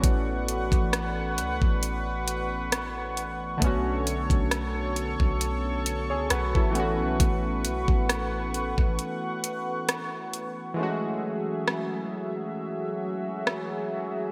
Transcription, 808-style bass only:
X:1
M:4/4
L:1/16
Q:"Swing 16ths" 1/4=67
K:A
V:1 name="808-style bass" clef=bass
A,,,3 A,,,3 C,, A,,,8- A,,, | B,,,3 B,,,4 B,,,4 C,, B,,, A,,,2 B,,, | A,,,2 B,,, A,,,4 A,,, z8 | z16 |]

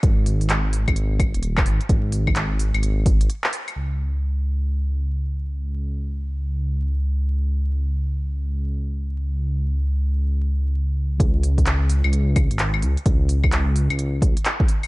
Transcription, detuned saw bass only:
X:1
M:4/4
L:1/16
Q:"Swing 16ths" 1/4=129
K:C#dor
V:1 name="Detuned saw bass" clef=bass
G,,,6- G,,, G,,,4 D,,,3 G,,, z | G,,,6- G,,, G,,, G,,,4 z4 | C,,16- | C,,16- |
C,,16- | C,,16 | C,,6- C,, C,,4 G,,,3 C,, z | C,,6- C,, C,,4 z4 z |]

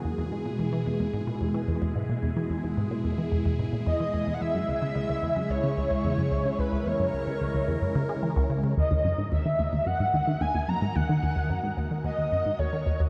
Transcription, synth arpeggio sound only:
X:1
M:4/4
L:1/16
Q:1/4=110
K:Ebphr
V:1 name="Synth arpeggio sound" clef=bass
=E,, E,, ^G,, B,, E,, =E, E,, E,, G,, B,, E,, E, E,, E,, G,, B,, | =E,, =E, E,, E,, ^G,, B,, E,, E, E,, E,, G,, B,, E,, E, E,, E,, | F,, G,, D,, D, D,, D,, F,, G,, D,, D, D,, D,, F,, G,, D,, D, | D,, D,, F,, G,, D,, D, D,, D,, F,, G,, D, A, F, D,, D, D, |
E,, E,, G,, A,, E,, E, E,, E,, G,, A,, E,, E, E,, E,, G,, A,, | E,, E, E,, E,, G,, A,, E,, E, E,, E,, G,, A,, E,, E, E,, E,, |]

